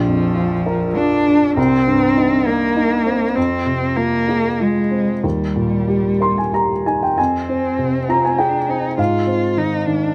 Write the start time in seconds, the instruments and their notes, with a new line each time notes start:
Already playing: upright piano A#1, cello F3
0.07 upright piano F2
0.35 upright piano F4
0.66 upright piano A#4
0.96 cello D4, upright piano F4
1.27 upright piano D4
1.57 upright piano C2, cello C4
1.87 upright piano G2
2.17 upright piano D#4
2.47 cello A#3, upright piano A#4
2.76 upright piano D#4
3.06 upright piano C4
3.36 upright piano F2, cello C4
3.66 upright piano C3
3.97 cello A#3, upright piano F4
4.29 upright piano G#4
4.60 cello G#3, upright piano F4
4.91 upright piano C4
5.24 upright piano D#2, cello G3
5.56 upright piano A#2
5.88 upright piano G4
6.21 upright piano A#4 C6
6.38 upright piano G#5
6.53 upright piano G4 A#5
6.86 upright piano D#4 G#5
7.03 upright piano G5
7.18 upright piano F2 G#5, cello C4
7.49 upright piano C4
7.78 upright piano C3
8.08 upright piano F4 A#5
8.25 upright piano G#5
8.38 cello D4, upright piano G#4 G5
8.69 upright piano C4, cello D#4
8.98 upright piano G#2 F5, cello F4
9.27 upright piano C4
9.57 upright piano D#3, cello D#4
9.86 upright piano D#3, cello D4